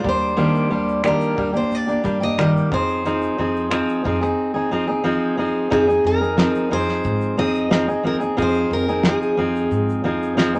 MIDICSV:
0, 0, Header, 1, 5, 480
1, 0, Start_track
1, 0, Tempo, 666667
1, 275, Time_signature, 4, 2, 24, 8
1, 7629, End_track
2, 0, Start_track
2, 0, Title_t, "Steel-string acoustic guitar"
2, 0, Program_c, 0, 25
2, 62, Note_on_c, 0, 72, 81
2, 773, Note_on_c, 0, 70, 86
2, 790, Note_off_c, 0, 72, 0
2, 1100, Note_off_c, 0, 70, 0
2, 1128, Note_on_c, 0, 72, 84
2, 1257, Note_off_c, 0, 72, 0
2, 1257, Note_on_c, 0, 74, 101
2, 1605, Note_off_c, 0, 74, 0
2, 1608, Note_on_c, 0, 75, 94
2, 1714, Note_off_c, 0, 75, 0
2, 1735, Note_on_c, 0, 75, 96
2, 1798, Note_off_c, 0, 75, 0
2, 1970, Note_on_c, 0, 72, 78
2, 3615, Note_off_c, 0, 72, 0
2, 4125, Note_on_c, 0, 68, 85
2, 4364, Note_off_c, 0, 68, 0
2, 4367, Note_on_c, 0, 70, 82
2, 4845, Note_on_c, 0, 72, 96
2, 4856, Note_off_c, 0, 70, 0
2, 5316, Note_off_c, 0, 72, 0
2, 5319, Note_on_c, 0, 75, 104
2, 5805, Note_off_c, 0, 75, 0
2, 5808, Note_on_c, 0, 70, 77
2, 5871, Note_off_c, 0, 70, 0
2, 6064, Note_on_c, 0, 72, 88
2, 6284, Note_off_c, 0, 72, 0
2, 6287, Note_on_c, 0, 70, 78
2, 6528, Note_off_c, 0, 70, 0
2, 6533, Note_on_c, 0, 68, 73
2, 6975, Note_off_c, 0, 68, 0
2, 7629, End_track
3, 0, Start_track
3, 0, Title_t, "Steel-string acoustic guitar"
3, 0, Program_c, 1, 25
3, 25, Note_on_c, 1, 55, 56
3, 27, Note_on_c, 1, 58, 57
3, 36, Note_on_c, 1, 62, 64
3, 40, Note_on_c, 1, 67, 68
3, 256, Note_off_c, 1, 55, 0
3, 257, Note_off_c, 1, 58, 0
3, 260, Note_off_c, 1, 62, 0
3, 262, Note_off_c, 1, 67, 0
3, 262, Note_on_c, 1, 51, 72
3, 265, Note_on_c, 1, 55, 75
3, 265, Note_on_c, 1, 58, 79
3, 269, Note_on_c, 1, 62, 79
3, 271, Note_on_c, 1, 67, 83
3, 497, Note_off_c, 1, 55, 0
3, 502, Note_off_c, 1, 58, 0
3, 505, Note_off_c, 1, 62, 0
3, 506, Note_on_c, 1, 55, 60
3, 509, Note_off_c, 1, 51, 0
3, 510, Note_on_c, 1, 58, 62
3, 511, Note_off_c, 1, 67, 0
3, 514, Note_on_c, 1, 62, 64
3, 520, Note_on_c, 1, 67, 66
3, 741, Note_off_c, 1, 55, 0
3, 741, Note_off_c, 1, 58, 0
3, 744, Note_off_c, 1, 67, 0
3, 745, Note_off_c, 1, 62, 0
3, 745, Note_on_c, 1, 51, 68
3, 750, Note_on_c, 1, 55, 72
3, 750, Note_on_c, 1, 58, 71
3, 752, Note_on_c, 1, 67, 87
3, 754, Note_on_c, 1, 62, 75
3, 976, Note_off_c, 1, 55, 0
3, 985, Note_off_c, 1, 58, 0
3, 985, Note_on_c, 1, 55, 65
3, 986, Note_off_c, 1, 62, 0
3, 989, Note_off_c, 1, 67, 0
3, 991, Note_off_c, 1, 51, 0
3, 993, Note_on_c, 1, 58, 65
3, 995, Note_on_c, 1, 62, 69
3, 998, Note_on_c, 1, 67, 68
3, 1091, Note_off_c, 1, 67, 0
3, 1095, Note_off_c, 1, 62, 0
3, 1099, Note_on_c, 1, 67, 51
3, 1101, Note_off_c, 1, 58, 0
3, 1104, Note_on_c, 1, 62, 48
3, 1110, Note_off_c, 1, 55, 0
3, 1110, Note_on_c, 1, 58, 44
3, 1337, Note_off_c, 1, 67, 0
3, 1343, Note_off_c, 1, 62, 0
3, 1346, Note_on_c, 1, 67, 50
3, 1352, Note_on_c, 1, 62, 53
3, 1353, Note_off_c, 1, 58, 0
3, 1362, Note_on_c, 1, 58, 45
3, 1461, Note_off_c, 1, 58, 0
3, 1465, Note_off_c, 1, 62, 0
3, 1465, Note_on_c, 1, 55, 64
3, 1470, Note_on_c, 1, 58, 56
3, 1471, Note_off_c, 1, 67, 0
3, 1473, Note_on_c, 1, 62, 62
3, 1478, Note_on_c, 1, 67, 67
3, 1577, Note_off_c, 1, 67, 0
3, 1582, Note_off_c, 1, 62, 0
3, 1585, Note_on_c, 1, 67, 55
3, 1589, Note_off_c, 1, 58, 0
3, 1591, Note_off_c, 1, 55, 0
3, 1591, Note_on_c, 1, 62, 46
3, 1598, Note_on_c, 1, 58, 42
3, 1709, Note_off_c, 1, 58, 0
3, 1711, Note_off_c, 1, 67, 0
3, 1713, Note_on_c, 1, 55, 76
3, 1714, Note_off_c, 1, 62, 0
3, 1714, Note_on_c, 1, 51, 84
3, 1717, Note_on_c, 1, 58, 75
3, 1723, Note_on_c, 1, 67, 81
3, 1951, Note_off_c, 1, 55, 0
3, 1954, Note_on_c, 1, 53, 57
3, 1955, Note_off_c, 1, 51, 0
3, 1957, Note_off_c, 1, 58, 0
3, 1960, Note_off_c, 1, 67, 0
3, 1961, Note_on_c, 1, 60, 58
3, 1963, Note_on_c, 1, 63, 64
3, 1967, Note_on_c, 1, 68, 63
3, 2188, Note_off_c, 1, 53, 0
3, 2192, Note_off_c, 1, 60, 0
3, 2197, Note_off_c, 1, 63, 0
3, 2197, Note_on_c, 1, 53, 75
3, 2198, Note_off_c, 1, 68, 0
3, 2201, Note_on_c, 1, 60, 78
3, 2205, Note_on_c, 1, 63, 89
3, 2207, Note_on_c, 1, 68, 84
3, 2426, Note_off_c, 1, 53, 0
3, 2430, Note_off_c, 1, 60, 0
3, 2435, Note_off_c, 1, 63, 0
3, 2435, Note_on_c, 1, 53, 59
3, 2439, Note_on_c, 1, 60, 71
3, 2442, Note_off_c, 1, 68, 0
3, 2443, Note_on_c, 1, 63, 62
3, 2449, Note_on_c, 1, 68, 68
3, 2658, Note_off_c, 1, 53, 0
3, 2666, Note_off_c, 1, 60, 0
3, 2667, Note_on_c, 1, 53, 78
3, 2671, Note_off_c, 1, 63, 0
3, 2672, Note_off_c, 1, 68, 0
3, 2674, Note_on_c, 1, 60, 86
3, 2679, Note_on_c, 1, 63, 90
3, 2680, Note_on_c, 1, 68, 86
3, 2901, Note_off_c, 1, 53, 0
3, 2909, Note_off_c, 1, 60, 0
3, 2910, Note_on_c, 1, 53, 67
3, 2913, Note_off_c, 1, 63, 0
3, 2917, Note_on_c, 1, 60, 73
3, 2919, Note_off_c, 1, 68, 0
3, 2921, Note_on_c, 1, 63, 75
3, 2927, Note_on_c, 1, 68, 74
3, 3024, Note_off_c, 1, 68, 0
3, 3032, Note_off_c, 1, 63, 0
3, 3033, Note_off_c, 1, 53, 0
3, 3033, Note_on_c, 1, 68, 60
3, 3037, Note_off_c, 1, 60, 0
3, 3041, Note_on_c, 1, 63, 54
3, 3046, Note_on_c, 1, 60, 47
3, 3260, Note_off_c, 1, 68, 0
3, 3269, Note_off_c, 1, 63, 0
3, 3269, Note_on_c, 1, 68, 59
3, 3274, Note_off_c, 1, 60, 0
3, 3278, Note_on_c, 1, 63, 57
3, 3282, Note_on_c, 1, 60, 46
3, 3390, Note_off_c, 1, 60, 0
3, 3391, Note_off_c, 1, 63, 0
3, 3393, Note_off_c, 1, 68, 0
3, 3393, Note_on_c, 1, 53, 67
3, 3399, Note_on_c, 1, 60, 73
3, 3400, Note_on_c, 1, 63, 87
3, 3404, Note_on_c, 1, 68, 79
3, 3500, Note_off_c, 1, 68, 0
3, 3509, Note_on_c, 1, 68, 58
3, 3512, Note_off_c, 1, 63, 0
3, 3515, Note_off_c, 1, 53, 0
3, 3518, Note_off_c, 1, 60, 0
3, 3520, Note_on_c, 1, 63, 59
3, 3526, Note_on_c, 1, 60, 48
3, 3621, Note_off_c, 1, 60, 0
3, 3626, Note_off_c, 1, 63, 0
3, 3627, Note_on_c, 1, 53, 85
3, 3630, Note_off_c, 1, 68, 0
3, 3630, Note_on_c, 1, 60, 91
3, 3635, Note_on_c, 1, 63, 93
3, 3638, Note_on_c, 1, 68, 86
3, 3861, Note_off_c, 1, 53, 0
3, 3868, Note_off_c, 1, 60, 0
3, 3870, Note_on_c, 1, 53, 70
3, 3871, Note_off_c, 1, 63, 0
3, 3876, Note_on_c, 1, 60, 66
3, 3877, Note_off_c, 1, 68, 0
3, 3880, Note_on_c, 1, 63, 69
3, 3885, Note_on_c, 1, 68, 74
3, 4097, Note_off_c, 1, 53, 0
3, 4104, Note_off_c, 1, 60, 0
3, 4104, Note_off_c, 1, 63, 0
3, 4106, Note_off_c, 1, 68, 0
3, 4106, Note_on_c, 1, 53, 74
3, 4113, Note_on_c, 1, 60, 83
3, 4113, Note_on_c, 1, 63, 91
3, 4114, Note_on_c, 1, 68, 84
3, 4221, Note_off_c, 1, 68, 0
3, 4226, Note_off_c, 1, 63, 0
3, 4230, Note_on_c, 1, 68, 48
3, 4231, Note_off_c, 1, 53, 0
3, 4234, Note_on_c, 1, 63, 47
3, 4235, Note_off_c, 1, 60, 0
3, 4246, Note_on_c, 1, 60, 43
3, 4461, Note_off_c, 1, 68, 0
3, 4469, Note_on_c, 1, 68, 58
3, 4471, Note_off_c, 1, 63, 0
3, 4478, Note_off_c, 1, 60, 0
3, 4479, Note_on_c, 1, 63, 49
3, 4487, Note_on_c, 1, 60, 43
3, 4584, Note_off_c, 1, 60, 0
3, 4586, Note_on_c, 1, 53, 75
3, 4587, Note_off_c, 1, 63, 0
3, 4588, Note_off_c, 1, 68, 0
3, 4593, Note_on_c, 1, 60, 79
3, 4596, Note_on_c, 1, 63, 85
3, 4596, Note_on_c, 1, 68, 81
3, 4819, Note_off_c, 1, 53, 0
3, 4822, Note_off_c, 1, 60, 0
3, 4825, Note_off_c, 1, 63, 0
3, 4828, Note_on_c, 1, 53, 62
3, 4830, Note_off_c, 1, 68, 0
3, 4831, Note_on_c, 1, 60, 69
3, 4833, Note_on_c, 1, 63, 69
3, 4839, Note_on_c, 1, 68, 66
3, 5300, Note_off_c, 1, 53, 0
3, 5309, Note_on_c, 1, 53, 61
3, 5312, Note_off_c, 1, 60, 0
3, 5314, Note_off_c, 1, 63, 0
3, 5315, Note_off_c, 1, 68, 0
3, 5315, Note_on_c, 1, 60, 66
3, 5317, Note_on_c, 1, 63, 72
3, 5323, Note_on_c, 1, 68, 74
3, 5540, Note_off_c, 1, 53, 0
3, 5544, Note_off_c, 1, 60, 0
3, 5547, Note_off_c, 1, 63, 0
3, 5547, Note_off_c, 1, 68, 0
3, 5548, Note_on_c, 1, 53, 76
3, 5552, Note_on_c, 1, 60, 86
3, 5556, Note_on_c, 1, 63, 83
3, 5556, Note_on_c, 1, 68, 89
3, 5663, Note_off_c, 1, 68, 0
3, 5671, Note_off_c, 1, 63, 0
3, 5672, Note_off_c, 1, 53, 0
3, 5672, Note_on_c, 1, 68, 57
3, 5674, Note_off_c, 1, 60, 0
3, 5680, Note_on_c, 1, 63, 49
3, 5687, Note_on_c, 1, 60, 42
3, 5785, Note_off_c, 1, 60, 0
3, 5785, Note_on_c, 1, 53, 62
3, 5789, Note_off_c, 1, 63, 0
3, 5793, Note_on_c, 1, 60, 61
3, 5794, Note_off_c, 1, 68, 0
3, 5798, Note_on_c, 1, 63, 61
3, 5804, Note_on_c, 1, 68, 70
3, 5893, Note_off_c, 1, 68, 0
3, 5902, Note_on_c, 1, 68, 59
3, 5905, Note_off_c, 1, 63, 0
3, 5910, Note_off_c, 1, 53, 0
3, 5910, Note_off_c, 1, 60, 0
3, 5914, Note_on_c, 1, 63, 49
3, 5919, Note_on_c, 1, 60, 41
3, 6019, Note_off_c, 1, 60, 0
3, 6022, Note_off_c, 1, 63, 0
3, 6025, Note_on_c, 1, 53, 71
3, 6027, Note_on_c, 1, 60, 79
3, 6029, Note_off_c, 1, 68, 0
3, 6031, Note_on_c, 1, 63, 85
3, 6036, Note_on_c, 1, 68, 87
3, 6386, Note_off_c, 1, 68, 0
3, 6390, Note_off_c, 1, 53, 0
3, 6391, Note_off_c, 1, 60, 0
3, 6391, Note_off_c, 1, 63, 0
3, 6395, Note_on_c, 1, 68, 52
3, 6400, Note_on_c, 1, 63, 48
3, 6407, Note_on_c, 1, 60, 49
3, 6512, Note_off_c, 1, 60, 0
3, 6515, Note_off_c, 1, 68, 0
3, 6516, Note_off_c, 1, 63, 0
3, 6519, Note_on_c, 1, 53, 79
3, 6520, Note_on_c, 1, 60, 71
3, 6525, Note_on_c, 1, 63, 74
3, 6529, Note_on_c, 1, 68, 72
3, 6739, Note_off_c, 1, 53, 0
3, 6748, Note_off_c, 1, 60, 0
3, 6748, Note_on_c, 1, 53, 64
3, 6750, Note_off_c, 1, 63, 0
3, 6754, Note_off_c, 1, 68, 0
3, 6756, Note_on_c, 1, 60, 70
3, 6759, Note_on_c, 1, 63, 66
3, 6763, Note_on_c, 1, 68, 75
3, 7219, Note_off_c, 1, 53, 0
3, 7228, Note_on_c, 1, 53, 71
3, 7231, Note_off_c, 1, 60, 0
3, 7234, Note_off_c, 1, 68, 0
3, 7234, Note_on_c, 1, 60, 74
3, 7237, Note_off_c, 1, 63, 0
3, 7240, Note_on_c, 1, 63, 72
3, 7243, Note_on_c, 1, 68, 86
3, 7457, Note_off_c, 1, 53, 0
3, 7463, Note_off_c, 1, 60, 0
3, 7464, Note_off_c, 1, 63, 0
3, 7465, Note_on_c, 1, 53, 91
3, 7470, Note_off_c, 1, 68, 0
3, 7472, Note_on_c, 1, 60, 101
3, 7472, Note_on_c, 1, 63, 93
3, 7479, Note_on_c, 1, 68, 91
3, 7582, Note_off_c, 1, 68, 0
3, 7590, Note_off_c, 1, 53, 0
3, 7590, Note_off_c, 1, 63, 0
3, 7591, Note_on_c, 1, 68, 57
3, 7593, Note_off_c, 1, 60, 0
3, 7599, Note_on_c, 1, 63, 56
3, 7606, Note_on_c, 1, 60, 44
3, 7629, Note_off_c, 1, 60, 0
3, 7629, Note_off_c, 1, 63, 0
3, 7629, Note_off_c, 1, 68, 0
3, 7629, End_track
4, 0, Start_track
4, 0, Title_t, "Upright bass"
4, 0, Program_c, 2, 32
4, 32, Note_on_c, 2, 39, 88
4, 427, Note_off_c, 2, 39, 0
4, 512, Note_on_c, 2, 39, 83
4, 809, Note_off_c, 2, 39, 0
4, 992, Note_on_c, 2, 39, 87
4, 1190, Note_off_c, 2, 39, 0
4, 1230, Note_on_c, 2, 39, 87
4, 1429, Note_off_c, 2, 39, 0
4, 1473, Note_on_c, 2, 43, 82
4, 1868, Note_off_c, 2, 43, 0
4, 1956, Note_on_c, 2, 41, 95
4, 2350, Note_off_c, 2, 41, 0
4, 2435, Note_on_c, 2, 41, 102
4, 2731, Note_off_c, 2, 41, 0
4, 2918, Note_on_c, 2, 41, 95
4, 3114, Note_off_c, 2, 41, 0
4, 4118, Note_on_c, 2, 41, 99
4, 4314, Note_off_c, 2, 41, 0
4, 4351, Note_on_c, 2, 41, 104
4, 4648, Note_off_c, 2, 41, 0
4, 4837, Note_on_c, 2, 41, 88
4, 5033, Note_off_c, 2, 41, 0
4, 5074, Note_on_c, 2, 44, 100
4, 5272, Note_off_c, 2, 44, 0
4, 5309, Note_on_c, 2, 41, 82
4, 5706, Note_off_c, 2, 41, 0
4, 5790, Note_on_c, 2, 39, 80
4, 5989, Note_off_c, 2, 39, 0
4, 6033, Note_on_c, 2, 41, 98
4, 6231, Note_off_c, 2, 41, 0
4, 6269, Note_on_c, 2, 41, 107
4, 6567, Note_off_c, 2, 41, 0
4, 6749, Note_on_c, 2, 41, 93
4, 6948, Note_off_c, 2, 41, 0
4, 6990, Note_on_c, 2, 44, 92
4, 7189, Note_off_c, 2, 44, 0
4, 7226, Note_on_c, 2, 41, 77
4, 7623, Note_off_c, 2, 41, 0
4, 7629, End_track
5, 0, Start_track
5, 0, Title_t, "Drums"
5, 33, Note_on_c, 9, 36, 97
5, 105, Note_off_c, 9, 36, 0
5, 149, Note_on_c, 9, 82, 46
5, 221, Note_off_c, 9, 82, 0
5, 273, Note_on_c, 9, 82, 71
5, 345, Note_off_c, 9, 82, 0
5, 397, Note_on_c, 9, 82, 53
5, 469, Note_off_c, 9, 82, 0
5, 638, Note_on_c, 9, 82, 45
5, 710, Note_off_c, 9, 82, 0
5, 747, Note_on_c, 9, 26, 105
5, 751, Note_on_c, 9, 82, 75
5, 819, Note_off_c, 9, 26, 0
5, 823, Note_off_c, 9, 82, 0
5, 868, Note_on_c, 9, 82, 68
5, 940, Note_off_c, 9, 82, 0
5, 993, Note_on_c, 9, 36, 85
5, 1065, Note_off_c, 9, 36, 0
5, 1121, Note_on_c, 9, 82, 48
5, 1193, Note_off_c, 9, 82, 0
5, 1232, Note_on_c, 9, 82, 67
5, 1304, Note_off_c, 9, 82, 0
5, 1357, Note_on_c, 9, 82, 52
5, 1429, Note_off_c, 9, 82, 0
5, 1469, Note_on_c, 9, 82, 57
5, 1476, Note_on_c, 9, 36, 84
5, 1541, Note_off_c, 9, 82, 0
5, 1548, Note_off_c, 9, 36, 0
5, 1602, Note_on_c, 9, 82, 53
5, 1674, Note_off_c, 9, 82, 0
5, 1717, Note_on_c, 9, 82, 74
5, 1719, Note_on_c, 9, 26, 111
5, 1789, Note_off_c, 9, 82, 0
5, 1791, Note_off_c, 9, 26, 0
5, 1847, Note_on_c, 9, 82, 48
5, 1919, Note_off_c, 9, 82, 0
5, 1957, Note_on_c, 9, 36, 106
5, 1957, Note_on_c, 9, 82, 39
5, 2029, Note_off_c, 9, 36, 0
5, 2029, Note_off_c, 9, 82, 0
5, 2078, Note_on_c, 9, 82, 54
5, 2150, Note_off_c, 9, 82, 0
5, 2198, Note_on_c, 9, 82, 74
5, 2270, Note_off_c, 9, 82, 0
5, 2318, Note_on_c, 9, 82, 55
5, 2390, Note_off_c, 9, 82, 0
5, 2565, Note_on_c, 9, 82, 48
5, 2637, Note_off_c, 9, 82, 0
5, 2674, Note_on_c, 9, 26, 116
5, 2678, Note_on_c, 9, 82, 70
5, 2746, Note_off_c, 9, 26, 0
5, 2750, Note_off_c, 9, 82, 0
5, 2800, Note_on_c, 9, 82, 66
5, 2872, Note_off_c, 9, 82, 0
5, 2918, Note_on_c, 9, 36, 77
5, 2990, Note_off_c, 9, 36, 0
5, 3045, Note_on_c, 9, 26, 36
5, 3051, Note_on_c, 9, 82, 47
5, 3117, Note_off_c, 9, 26, 0
5, 3123, Note_off_c, 9, 82, 0
5, 4118, Note_on_c, 9, 82, 74
5, 4119, Note_on_c, 9, 36, 104
5, 4190, Note_off_c, 9, 82, 0
5, 4191, Note_off_c, 9, 36, 0
5, 4243, Note_on_c, 9, 82, 58
5, 4315, Note_off_c, 9, 82, 0
5, 4487, Note_on_c, 9, 82, 48
5, 4559, Note_off_c, 9, 82, 0
5, 4592, Note_on_c, 9, 38, 108
5, 4596, Note_on_c, 9, 82, 80
5, 4664, Note_off_c, 9, 38, 0
5, 4668, Note_off_c, 9, 82, 0
5, 4717, Note_on_c, 9, 82, 66
5, 4789, Note_off_c, 9, 82, 0
5, 4957, Note_on_c, 9, 38, 35
5, 4963, Note_on_c, 9, 82, 47
5, 5029, Note_off_c, 9, 38, 0
5, 5035, Note_off_c, 9, 82, 0
5, 5068, Note_on_c, 9, 82, 73
5, 5075, Note_on_c, 9, 36, 76
5, 5140, Note_off_c, 9, 82, 0
5, 5147, Note_off_c, 9, 36, 0
5, 5193, Note_on_c, 9, 82, 53
5, 5265, Note_off_c, 9, 82, 0
5, 5435, Note_on_c, 9, 82, 51
5, 5507, Note_off_c, 9, 82, 0
5, 5551, Note_on_c, 9, 82, 83
5, 5553, Note_on_c, 9, 38, 116
5, 5623, Note_off_c, 9, 82, 0
5, 5625, Note_off_c, 9, 38, 0
5, 5685, Note_on_c, 9, 82, 51
5, 5757, Note_off_c, 9, 82, 0
5, 5910, Note_on_c, 9, 82, 55
5, 5982, Note_off_c, 9, 82, 0
5, 6036, Note_on_c, 9, 36, 99
5, 6039, Note_on_c, 9, 82, 69
5, 6108, Note_off_c, 9, 36, 0
5, 6111, Note_off_c, 9, 82, 0
5, 6154, Note_on_c, 9, 82, 58
5, 6226, Note_off_c, 9, 82, 0
5, 6395, Note_on_c, 9, 82, 51
5, 6467, Note_off_c, 9, 82, 0
5, 6505, Note_on_c, 9, 38, 112
5, 6509, Note_on_c, 9, 82, 74
5, 6577, Note_off_c, 9, 38, 0
5, 6581, Note_off_c, 9, 82, 0
5, 6638, Note_on_c, 9, 82, 65
5, 6710, Note_off_c, 9, 82, 0
5, 6882, Note_on_c, 9, 82, 50
5, 6954, Note_off_c, 9, 82, 0
5, 6995, Note_on_c, 9, 82, 73
5, 7067, Note_off_c, 9, 82, 0
5, 7122, Note_on_c, 9, 82, 53
5, 7194, Note_off_c, 9, 82, 0
5, 7363, Note_on_c, 9, 82, 50
5, 7435, Note_off_c, 9, 82, 0
5, 7471, Note_on_c, 9, 82, 83
5, 7473, Note_on_c, 9, 38, 105
5, 7543, Note_off_c, 9, 82, 0
5, 7545, Note_off_c, 9, 38, 0
5, 7597, Note_on_c, 9, 82, 50
5, 7629, Note_off_c, 9, 82, 0
5, 7629, End_track
0, 0, End_of_file